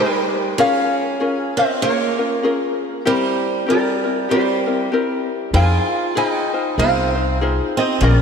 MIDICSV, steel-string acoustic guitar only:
0, 0, Header, 1, 2, 480
1, 0, Start_track
1, 0, Key_signature, -4, "minor"
1, 0, Tempo, 619835
1, 451, Time_signature, 4, 2, 24, 8
1, 6363, End_track
2, 0, Start_track
2, 0, Title_t, "Steel-string acoustic guitar"
2, 0, Program_c, 0, 25
2, 0, Note_on_c, 0, 55, 71
2, 421, Note_off_c, 0, 55, 0
2, 451, Note_on_c, 0, 61, 84
2, 1185, Note_off_c, 0, 61, 0
2, 1216, Note_on_c, 0, 60, 81
2, 1396, Note_off_c, 0, 60, 0
2, 1411, Note_on_c, 0, 58, 81
2, 2339, Note_off_c, 0, 58, 0
2, 2378, Note_on_c, 0, 55, 71
2, 2822, Note_off_c, 0, 55, 0
2, 2865, Note_on_c, 0, 55, 65
2, 3306, Note_off_c, 0, 55, 0
2, 3340, Note_on_c, 0, 55, 67
2, 3783, Note_off_c, 0, 55, 0
2, 4290, Note_on_c, 0, 65, 83
2, 4738, Note_off_c, 0, 65, 0
2, 4777, Note_on_c, 0, 63, 78
2, 5222, Note_off_c, 0, 63, 0
2, 5262, Note_on_c, 0, 60, 74
2, 5704, Note_off_c, 0, 60, 0
2, 6018, Note_on_c, 0, 60, 79
2, 6197, Note_off_c, 0, 60, 0
2, 6200, Note_on_c, 0, 58, 77
2, 6363, Note_off_c, 0, 58, 0
2, 6363, End_track
0, 0, End_of_file